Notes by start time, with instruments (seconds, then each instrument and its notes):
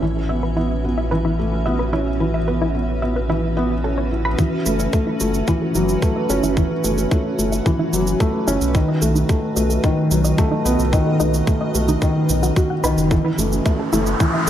Already playing: ambient pad C#4 F#4 B4 E5
0.02 analog synth bass A1, felt piano E3
0.29 felt piano B3, synth arpeggio sound E5
0.43 synth arpeggio sound B4
0.57 felt piano B3, synth arpeggio sound E4
0.85 felt piano B3
0.98 synth arpeggio sound E5
1.11 felt piano E3, synth arpeggio sound B4
1.25 synth arpeggio sound E4
1.39 felt piano A3
1.66 felt piano B3, synth arpeggio sound E5
1.79 synth arpeggio sound B4
1.93 felt piano C#4, synth arpeggio sound E4
2.20 felt piano E3
2.34 synth arpeggio sound E5
2.48 felt piano B3, synth arpeggio sound B4
2.62 synth arpeggio sound E4
2.75 felt piano B3
3.02 felt piano B3, synth arpeggio sound E5
3.16 synth arpeggio sound B4
3.29 felt piano E3, synth arpeggio sound E4
3.57 felt piano B3, synth arpeggio sound E4
3.84 felt piano C#4, synth arpeggio sound A4
3.98 synth arpeggio sound C#5
4.11 felt piano E4
4.25 synth arpeggio sound B5
4.38 felt piano E3, synth arpeggio sound E4, kick, shaker
4.66 analog synth bass F#1, felt piano A3, shaker
4.80 synth arpeggio sound E5, shaker
4.93 felt piano A3, synth arpeggio sound A4, kick, shaker
5.07 synth arpeggio sound E4
5.20 analog synth bass F#1, felt piano A3, shaker
5.34 shaker
5.48 felt piano E3, synth arpeggio sound E5, kick, shaker
5.62 synth arpeggio sound A4
5.75 analog synth bass F#1, felt piano F#3, synth arpeggio sound E4, shaker
5.89 shaker
6.02 felt piano A3, kick, shaker
6.16 synth arpeggio sound E5
6.30 analog synth bass F#1, felt piano C#4, synth arpeggio sound A4, shaker
6.43 analog synth bass F#1, synth arpeggio sound E4, shaker
6.57 felt piano E3, kick, shaker
6.84 analog synth bass F#1, felt piano A3, synth arpeggio sound E5, shaker
6.98 synth arpeggio sound A4, shaker
7.11 felt piano A3, synth arpeggio sound E4, kick, shaker
7.39 analog synth bass F#1, felt piano A3, shaker
7.52 synth arpeggio sound E5, shaker
7.66 felt piano E3, synth arpeggio sound A4, kick, shaker
7.79 synth arpeggio sound E4
7.93 analog synth bass F#1, felt piano F#3, shaker
8.07 shaker
8.20 felt piano A3, synth arpeggio sound E5, kick, shaker
8.34 synth arpeggio sound A4
8.47 analog synth bass F#1, felt piano C#4, synth arpeggio sound E4, shaker
8.61 analog synth bass B1, shaker
8.75 felt piano D#3, kick, shaker
8.88 synth arpeggio sound D#5
9.02 analog synth bass B1, felt piano A3, synth arpeggio sound A4, shaker
9.15 synth arpeggio sound D#4, shaker
9.29 felt piano A3, kick, shaker
9.51 ambient pad D#5
9.56 analog synth bass B1, felt piano A3, synth arpeggio sound D#5, shaker
9.70 synth arpeggio sound A4, shaker
9.84 felt piano D#3, synth arpeggio sound D#4, kick, shaker
10.11 analog synth bass B1, felt piano F#3, shaker
10.24 synth arpeggio sound D#5, shaker
10.38 felt piano A3, synth arpeggio sound A4, kick, shaker
10.51 synth arpeggio sound D#4
10.65 analog synth bass B1, felt piano B3, shaker
10.79 analog synth bass B1, shaker
10.93 felt piano D#3, synth arpeggio sound D#5, kick, shaker
11.07 synth arpeggio sound A4
11.20 analog synth bass B1, felt piano A3, synth arpeggio sound D#4, shaker
11.34 shaker
11.47 felt piano A3, kick, shaker
11.61 synth arpeggio sound D#5
11.74 analog synth bass B1, felt piano A3, synth arpeggio sound A4, shaker
11.88 synth arpeggio sound D#4, shaker
12.02 felt piano D#3, kick, shaker
12.29 analog synth bass B1, felt piano D#3, shaker
12.43 synth arpeggio sound F#4, shaker
12.56 synth arpeggio sound F#4, felt piano F#4, kick, shaker
12.70 synth arpeggio sound F#5
12.83 analog synth bass B1, felt piano D#3, synth arpeggio sound B4, shaker
12.97 analog synth bass F#1, shaker
13.11 felt piano E3, ambient pad C#4, synth arpeggio sound A4, kick, riser, shaker
13.25 synth arpeggio sound E4
13.38 analog synth bass F#1, felt piano A3, shaker
13.52 shaker
13.66 felt piano A3, synth arpeggio sound E5, kick, shaker
13.79 synth arpeggio sound A4
13.93 analog synth bass F#1, felt piano A3, synth arpeggio sound E4, shaker
14.06 shaker
14.20 felt piano E3, kick, shaker
14.34 synth arpeggio sound E5